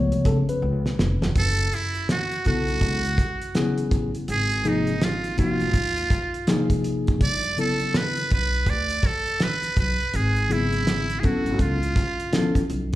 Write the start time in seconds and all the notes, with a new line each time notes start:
Already playing: F3 A3 B3 C#5
0.12 C#2, closed hi-hat
0.25 C#3 A4, kick, closed hi-hat
0.49 B4, closed hi-hat
0.62 C#2
0.86 snare
0.99 F1, snare
1.22 E1, snare
1.36 F#1 A4, kick, closed hi-hat
1.58 closed hi-hat
1.73 E4, closed hi-hat
1.95 closed hi-hat
2.09 F#4, snare, closed hi-hat
2.32 closed hi-hat
2.45 B1 C#3 F#3 B3 E4 F#4 A4, kick, closed hi-hat
2.68 closed hi-hat
2.81 C#2, kick, closed hi-hat
3.05 closed hi-hat
3.18 kick, closed hi-hat
3.42 closed hi-hat
3.55 C#3 F#3 B3 E4 G#4, snare, closed hi-hat
3.78 closed hi-hat
3.91 A1, kick, closed hi-hat
4.15 closed hi-hat
4.28 G#1 G#4, closed hi-hat
4.51 closed hi-hat
4.64 C3 F3 A#3 D#4 G#4, closed hi-hat
4.68 D#4
4.87 closed hi-hat
5.01 F4, snare, closed hi-hat
5.24 closed hi-hat
5.38 C3 F3 A#3 D#4 F4 F#4, kick, closed hi-hat
5.61 G#1, closed hi-hat
5.74 D#2, kick, closed hi-hat
5.97 closed hi-hat
6.10 kick, closed hi-hat
6.34 closed hi-hat
6.47 C3 F3 A#3 D#4 G#4, snare, closed hi-hat
6.70 kick, closed hi-hat
6.84 closed hi-hat
7.07 F1, kick, closed hi-hat
7.21 G1 D5, kick, closed hi-hat
7.43 closed hi-hat
7.58 C#3 F#3 B3 E4 A4, closed hi-hat
7.80 closed hi-hat
7.94 B4, snare, closed hi-hat
8.17 closed hi-hat
8.30 B1 B4, kick, closed hi-hat
8.53 closed hi-hat
8.66 D2 D5, kick, closed hi-hat
8.90 closed hi-hat
9.03 A4, kick, closed hi-hat
9.27 closed hi-hat
9.40 B4, snare, closed hi-hat
9.63 closed hi-hat
9.77 B1 B4, kick, closed hi-hat
10.00 closed hi-hat
10.14 G#1 G#4, closed hi-hat
10.36 closed hi-hat
10.50 C#3 F#3 B3 E4 G#4, closed hi-hat
10.72 closed hi-hat
10.87 snare, closed hi-hat
11.10 closed hi-hat
11.20 F#3 B3 C#4 E4 G#4, closed hi-hat
11.24 F#4 A4, kick
11.46 G#1, closed hi-hat
11.59 C#2 F4, kick, closed hi-hat
11.83 closed hi-hat
11.96 kick, closed hi-hat
12.20 closed hi-hat
12.32 F3 B3 C#4 E4 A4, snare, closed hi-hat
12.55 kick, closed hi-hat
12.70 B1, closed hi-hat